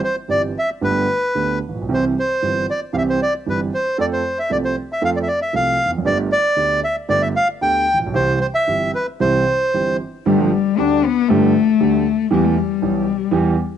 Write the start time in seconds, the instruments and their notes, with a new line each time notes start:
0.04 bandoneon C5
0.28 grand piano G1 G2 E3 G3 C4 G4, bandoneon D5
0.58 bandoneon E5
0.81 grand piano G1 G2 D3 A3 B3 G4, bandoneon B4
1.35 grand piano D2 D3 A3 B3 G4
1.69 grand piano A1
1.75 grand piano A#1
1.82 grand piano B1
1.89 grand piano C2 C3 E3 G3 C4 G4
1.94 bandoneon C5
2.19 bandoneon C5
2.42 grand piano G1 G2 E3 G3 C4 G4
2.71 bandoneon D5
2.93 grand piano C2 C3 E3 G3 C4 G4, bandoneon F5
2.98 bandoneon E5
3.09 bandoneon C5
3.22 bandoneon D5
3.46 grand piano G1 G2 E3 G3 C4 G4, bandoneon B4
3.74 bandoneon C5
3.98 grand piano F2 F3 A3 C4 A4, bandoneon D5
4.13 bandoneon C5
4.39 bandoneon E5
4.50 grand piano C2 C3 F3 A3 C4 A4, bandoneon D5
4.65 bandoneon C5
4.93 bandoneon E5
5.01 grand piano F2 F3 A3 C4 A4, bandoneon F5
5.16 bandoneon D5
5.23 bandoneon E5
5.28 bandoneon D5
5.42 bandoneon E5
5.53 grand piano C2 C3 F3 A3 C4 A4, bandoneon F5
5.85 grand piano E2
5.91 grand piano F2
5.98 grand piano F#2
6.05 grand piano G1 G2 D3 A3 B3 G4, bandoneon D5
6.32 bandoneon D5
6.56 grand piano D2 D3 A3 B3 G4
6.84 bandoneon E5
7.09 grand piano G1 G2 D3 A3 B3 G4, bandoneon D5
7.22 bandoneon E5
7.36 bandoneon F5
7.61 grand piano D2 D3 A3 B3 G4, bandoneon G5
7.93 grand piano A1
8.00 grand piano A#1
8.06 grand piano B1
8.13 grand piano C2 C3 E3 G3 C4 G4, bandoneon C5
8.41 bandoneon C5
8.55 bandoneon E5
8.67 grand piano G1 G2 E3 G3 C4 G4
8.95 bandoneon B4
9.20 grand piano C2 C3 E3 G3 C4 G4, bandoneon C5
9.74 grand piano G1 G2 E3 G3 C4 G4
10.26 grand piano G1 G2 D3 G3 A3 G4, cello G3
10.39 cello F3
10.52 cello G3
10.78 grand piano D2 D3 G3 A3 G4, cello D4
11.05 cello B3
11.29 grand piano G1 G2 D3 G3 A3 G4, cello A3
11.80 grand piano D2 D3 G3 A3 G4
12.31 grand piano E2 E3 G3 B3 G4, cello G3
12.44 cello A3
12.57 cello G3
12.82 grand piano B1 B2 E3 G3 B3 G4
13.31 grand piano E2 E3 G3 B3 G4